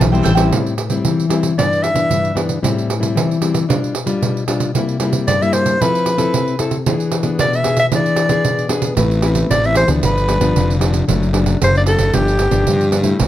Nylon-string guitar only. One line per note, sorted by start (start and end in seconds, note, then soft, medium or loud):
0.00 0.50 E3 medium
0.12 0.35 G3 medium
0.12 0.35 C4 medium
0.12 0.36 E4 medium
0.36 0.73 G3 medium
0.36 0.73 C4 medium
0.36 0.74 E4 medium
0.52 1.03 A2 medium
0.90 1.27 G3 soft
0.90 1.27 C4 soft
0.90 1.27 E4 medium
1.05 1.55 E3 medium
1.29 1.53 G3 soft
1.29 1.53 C4 soft
1.29 1.53 E4 soft
1.57 2.08 G2 medium
1.57 1.93 E3 soft
1.57 1.93 B3 soft
1.57 1.94 D4 medium
1.94 2.31 E3 soft
1.94 2.32 B3 soft
1.94 2.32 D4 medium
2.10 2.61 G2 medium
2.35 2.59 E3 soft
2.35 2.59 B3 medium
2.35 2.59 D4 medium
2.63 3.13 A2 medium
2.63 2.88 G3 soft
2.63 2.88 C4 soft
2.63 2.88 E4 soft
3.00 3.37 G3 soft
3.00 3.37 C4 medium
3.00 3.38 E4 soft
3.16 3.66 E3 medium
3.41 3.64 G3 soft
3.41 3.65 C4 soft
3.41 3.65 E4 medium
3.68 4.19 B2 medium
3.68 3.94 G3 soft
3.68 3.94 D4 medium
3.68 3.94 F4 medium
4.06 4.43 G3 medium
4.06 4.43 D4 medium
4.06 4.43 F4 medium
4.22 4.72 B2 medium
4.47 4.70 G3 soft
4.47 4.70 D4 medium
4.47 4.71 F4 medium
4.74 5.25 C3 medium
4.74 4.97 G3 soft
4.74 4.97 A#3 soft
4.74 4.98 E4 medium
5.00 5.26 G3 soft
5.00 5.26 A#3 soft
5.00 5.26 E4 soft
5.28 5.78 G2 medium
5.42 5.77 G3 soft
5.42 5.77 A#3 soft
5.42 5.77 E4 medium
5.81 6.31 F3 medium
5.81 6.16 C4 medium
5.81 6.17 E4 medium
5.81 6.17 A4 medium
6.18 6.54 C4 medium
6.18 6.55 E4 medium
6.18 6.55 A4 medium
6.33 6.84 C3 medium
6.59 6.77 C4 soft
6.59 6.77 E4 medium
6.59 6.77 A4 medium
6.87 7.37 E3 medium
6.87 7.22 B3 soft
6.87 7.22 D4 soft
6.87 7.22 G#4 soft
7.24 7.60 B3 medium
7.24 7.61 D4 medium
7.24 7.61 G#4 medium
7.39 7.89 B2 medium
7.65 7.81 B3 soft
7.65 7.81 D4 soft
7.65 7.81 G#4 medium
7.92 8.42 E3 medium
7.92 8.27 B3 medium
7.92 8.28 D4 soft
7.92 8.28 G#4 medium
8.30 8.66 B3 medium
8.30 8.66 D4 medium
8.30 8.67 G#4 medium
8.45 8.95 B2 medium
8.69 8.92 B3 medium
8.69 8.93 D4 medium
8.69 8.93 G#4 medium
8.98 9.48 A3 soft
8.98 9.20 C4 soft
8.98 9.20 E4 soft
8.98 9.20 B4 medium
9.23 9.59 C4 soft
9.23 9.59 E4 soft
9.23 9.59 B4 soft
9.50 10.00 E3 soft
9.64 9.86 C4 soft
9.64 9.86 E4 soft
9.64 9.87 B4 soft
9.88 10.24 F3 medium
9.88 10.25 B3 medium
9.88 10.25 D4 soft
10.03 10.53 G2 soft
10.28 10.38 F3 soft
10.28 10.38 B3 soft
10.28 10.38 D4 medium
10.40 10.77 F3 medium
10.40 10.77 B3 soft
10.40 10.77 D4 medium
10.55 11.06 D3 soft
10.80 11.05 F3 medium
10.80 11.06 B3 soft
10.80 11.06 D4 medium
11.07 11.58 F#2 soft
11.07 11.30 F#3 medium
11.07 11.30 A3 soft
11.07 11.31 D4 medium
11.33 11.59 F#3 medium
11.33 11.59 A3 soft
11.33 11.59 D4 medium
11.61 12.11 F#2 soft
11.75 12.10 F#3 soft
11.75 12.10 A3 soft
11.75 12.10 D4 soft
12.13 12.64 G2 soft
12.13 12.39 F3 soft
12.13 12.39 B3 soft
12.13 12.39 D4 medium
12.51 12.88 F3 medium
12.51 12.88 B3 soft
12.51 12.88 D4 medium
12.67 13.17 D3 soft
12.91 13.01 F3 soft
12.91 13.02 B3 medium
12.91 13.02 D4 medium
13.04 13.28 G3 medium
13.04 13.28 A3 medium
13.04 13.28 E4 medium
13.19 13.28 C3 soft